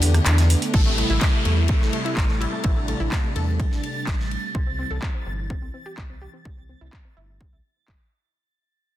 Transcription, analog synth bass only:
0.00 0.20 E2 medium
0.26 0.55 E2 medium
0.74 1.03 A1 loud
1.10 1.17 A1 medium
1.45 1.74 E2 loud
1.81 1.89 A1 medium
2.17 2.46 A1 medium
2.64 2.94 A1 loud
3.00 3.08 A1 medium
3.36 3.65 E2 loud
3.71 3.79 A1 medium
4.07 4.36 A1 medium
4.55 4.84 C2 loud
4.91 4.98 C2 medium
5.26 5.55 G1 loud
5.62 5.70 C2 medium
5.98 6.27 C2 medium
6.45 6.74 C2 medium
6.81 6.89 C2 medium
7.17 7.46 G1 loud
7.53 7.60 C2 medium
7.88 7.96 G1 medium

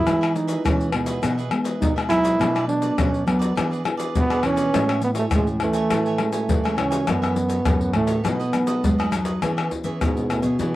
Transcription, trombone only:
0.00 0.38 E4 loud
0.36 0.65 D#4 medium
0.66 0.95 C#4 medium
0.93 1.52 B3 medium
1.81 1.94 D#4 medium
2.09 2.65 E4 loud
2.68 3.00 D4 loud
2.98 3.27 C#4 loud
3.27 3.82 B3 medium
4.19 4.48 B3 loud
4.47 5.04 C#4 loud
5.04 5.11 B3 medium
5.19 5.25 A3 medium
5.36 5.49 G#3 medium
5.63 6.32 A3 loud
6.34 6.81 A3 medium
6.79 7.09 C#4 loud
7.09 7.93 B3 medium
7.95 8.28 A3 medium
8.26 9.14 B3 medium
10.04 10.30 G#2 medium
10.31 10.46 A2 medium
10.45 10.76 B2 medium

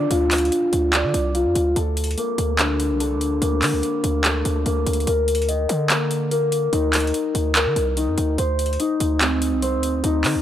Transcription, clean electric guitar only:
0.00 1.76 D4 medium
0.00 0.92 D5 medium
0.11 1.34 F4 medium
0.94 1.76 D5 medium
1.35 1.76 F4 medium
1.76 2.99 A4 loud
2.18 3.40 A#3 medium
2.59 5.07 D3 medium
3.00 4.23 A4 medium
3.42 4.65 A#3 loud
4.24 5.07 A4 medium
4.66 5.07 A#3 medium
5.07 6.30 A#4 medium
5.49 7.97 D#5 medium
5.90 8.38 A#3 medium
6.31 7.54 A#4 medium
6.73 7.96 D#4 medium
7.55 8.38 A#4 medium
7.97 8.38 D#4 medium
8.38 9.61 C5 loud
8.80 10.03 D#4 medium
9.21 10.42 C4 medium
9.62 10.42 C5 loud
10.04 10.42 D#4 medium

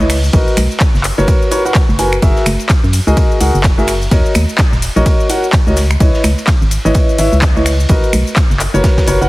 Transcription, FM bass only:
0.00 0.29 C#2 loud
0.33 0.44 B1 loud
0.57 0.67 B1 medium
0.94 1.11 F#1 loud
1.18 1.25 F#1 loud
1.89 2.18 F#1 medium
2.22 2.33 F#1 loud
2.46 2.56 F#1 loud
2.84 3.00 F#2 loud
3.07 3.14 C#2 loud
3.41 3.51 C#2 medium
3.54 4.07 F#1 medium
4.11 4.22 D#2 loud
4.35 4.45 D#2 loud
4.73 4.89 D#1 loud
4.96 5.03 A#1 loud
5.67 5.96 C#2 medium
6.00 6.11 C#2 loud
6.24 6.34 C#2 loud
6.61 6.78 G#1 loud
6.85 6.92 G#1 loud
7.19 7.29 G#1 medium
7.32 7.85 C#2 loud
7.89 8.00 B1 loud
8.13 8.23 B1 loud
8.50 8.67 F#1 loud
8.74 8.81 F#1 loud
9.08 9.18 F#1 loud
9.21 9.29 F#1 medium

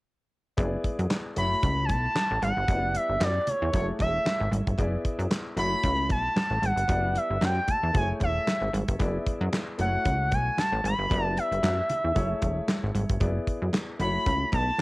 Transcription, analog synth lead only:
1.38 1.86 B5 loud
1.85 1.92 G#5 medium
1.90 2.42 A5 loud
2.43 2.97 F#5 loud
2.96 3.24 E5 medium
3.23 3.50 D5 medium
3.48 3.74 C#5 medium
3.74 3.86 C#5 medium
4.01 4.49 E5 medium
5.59 6.07 B5 loud
6.12 6.67 A5 loud
6.65 7.19 F#5 medium
7.17 7.45 E5 medium
7.44 7.72 G5 medium
7.70 7.96 A5 loud
7.97 8.08 G#5 medium
8.23 8.71 E5 medium
9.81 10.35 F#5 loud
10.34 10.61 G#5 loud
10.59 10.85 A5 loud
10.86 11.24 B5 loud
11.24 11.39 A5 loud
11.38 12.95 E5 medium
14.01 14.49 B5 loud
14.54 14.82 A5 loud

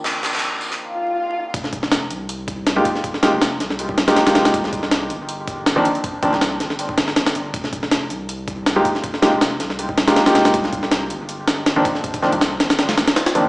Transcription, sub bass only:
1.54 1.81 F1 loud
1.83 2.12 F1 medium
2.10 2.84 C2 medium
3.33 3.62 F1 medium
3.60 3.96 C2 medium
3.98 4.07 C2 loud
4.35 4.52 F1 medium
4.54 4.81 C2 loud
4.83 5.11 C2 medium
5.10 5.84 G1 medium
6.33 6.62 C2 medium
6.60 6.96 G1 medium
6.98 7.15 G1 medium
7.16 7.33 G1 loud
7.35 7.52 G1 medium
7.54 7.81 F1 loud
7.83 8.12 F1 medium
8.10 8.84 C2 medium
9.33 9.62 F1 medium
9.60 9.96 C2 medium
9.98 10.07 C2 loud
10.35 10.52 F1 medium
10.54 10.81 C2 loud
10.83 11.12 C2 medium
11.10 11.84 G1 medium
12.33 12.62 C2 medium
12.60 12.99 G1 medium
12.98 13.07 D#2 loud
13.45 13.49 C2 medium

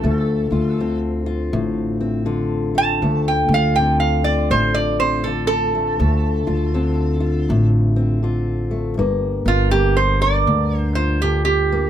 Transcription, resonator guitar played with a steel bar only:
0.00 0.99 A4 medium
2.78 3.26 A5 loud
3.28 3.52 G5 medium
3.54 3.77 F5 medium
3.76 3.99 G5 medium
4.00 4.25 F5 medium
4.24 4.49 D5 medium
4.51 4.75 C5 medium
4.74 4.99 D5 medium
5.00 5.24 C5 medium
5.24 5.46 A4 medium
5.47 7.68 A4 loud
9.48 9.71 F4 loud
9.71 9.96 G4 medium
9.97 10.21 C5 medium
10.22 10.79 D5 loud
10.79 10.94 C5 loud
10.95 11.20 C5 medium
11.22 11.44 G4 medium
11.45 11.90 G4 medium

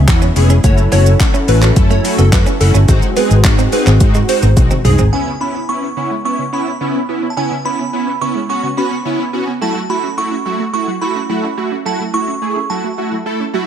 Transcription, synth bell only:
5.13 5.42 G#5 medium
5.41 5.70 B5 medium
5.69 6.24 C#6 medium
6.25 6.51 C#6 medium
6.53 7.05 B5 medium
7.30 7.37 A5 medium
7.37 7.66 G#5 medium
7.65 8.23 B5 medium
8.22 8.47 C#6 medium
8.50 8.76 C#6 medium
8.78 9.30 B5 medium
9.62 9.88 A5 medium
9.90 10.18 B5 medium
10.18 10.72 C#6 loud
10.74 11.02 C#6 medium
11.01 11.54 B5 medium
11.86 11.99 A5 medium
12.14 12.72 C#6 loud
12.70 13.67 A5 medium

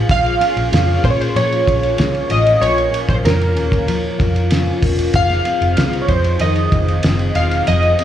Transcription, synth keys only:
0.11 1.01 F5 loud
1.05 1.08 C5 loud
1.10 1.18 C#5 medium
1.21 1.36 C5 medium
1.36 2.33 C#5 loud
2.31 2.63 D#5 loud
2.61 3.10 C#5 loud
3.09 3.16 C5 medium
3.25 4.16 A#4 medium
5.16 5.99 F5 loud
6.02 6.09 C#5 medium
6.09 6.42 C5 medium
6.41 7.38 D#5 loud
7.36 7.65 F5 medium
7.68 8.04 D#5 loud

